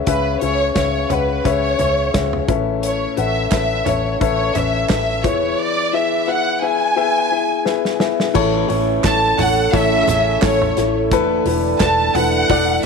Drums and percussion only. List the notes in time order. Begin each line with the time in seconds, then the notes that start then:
0.07 kick, closed hi-hat
0.41 closed hi-hat
0.75 kick, snare, closed hi-hat
1.10 closed hi-hat, floor tom
1.45 kick, closed hi-hat
1.79 closed hi-hat, floor tom
2.14 kick, snare, closed hi-hat
2.33 floor tom
2.48 kick, closed hi-hat
2.83 closed hi-hat
3.17 closed hi-hat
3.52 kick, snare, clap, closed hi-hat
3.86 closed hi-hat, floor tom
4.21 kick, closed hi-hat
4.55 closed hi-hat, floor tom
4.89 kick, snare, clap, closed hi-hat
5.24 kick, closed hi-hat
7.66 snare
7.85 snare
8.00 snare
8.20 snare
8.35 kick, crash
8.70 hi-hat pedal, open hi-hat
9.04 kick, snare, clap, hi-hat pedal, open hi-hat
9.38 floor tom, hi-hat pedal, open hi-hat
9.73 kick, hi-hat pedal, open hi-hat
10.08 floor tom, hi-hat pedal, open hi-hat
10.42 kick, snare, clap, hi-hat pedal, open hi-hat
10.62 floor tom
10.77 snare, hi-hat pedal, open hi-hat
11.11 kick, hi-hat pedal, open hi-hat
11.46 hi-hat pedal, open hi-hat
11.80 kick, snare, clap, hi-hat pedal, open hi-hat
12.15 floor tom, hi-hat pedal, open hi-hat
12.49 kick, hi-hat pedal, open hi-hat